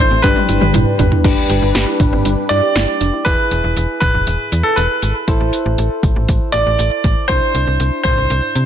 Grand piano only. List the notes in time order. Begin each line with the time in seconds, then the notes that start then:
Already playing: C5
0.22 B4
2.49 D5
3.25 B4
4.00 B4
4.63 A4
4.76 B4
6.52 D5
7.28 C5
8.03 C5